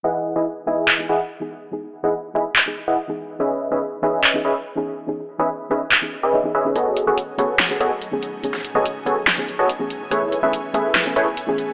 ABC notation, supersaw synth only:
X:1
M:4/4
L:1/16
Q:1/4=143
K:E
V:1 name="Supersaw synth"
[E,EGdf]3 [E,EGdg] z2 [E,EGdg]4 [E,EGdf] z4 z | z3 [E,EGdf] z2 [E,EGdb] z4 [E,EGdf] z4 | [CGBde]3 [CGBde] z2 [CGBde]4 [CGBde] z4 z | z3 [CGBde] z2 [CGBde] z4 [CGBde]3 [CGBde]2 |
[B,FGAcd]3 [B,FGAcf] z2 [B,FGAcf]4 [B,FGAcd] z4 z | z3 [B,FGAcd] z2 [B,FGAcg] z4 [B,FGAcd] z4 | [A,EGBc]3 [A,EGBe] z2 [A,EGBe]4 [A,EGBc] z4 z |]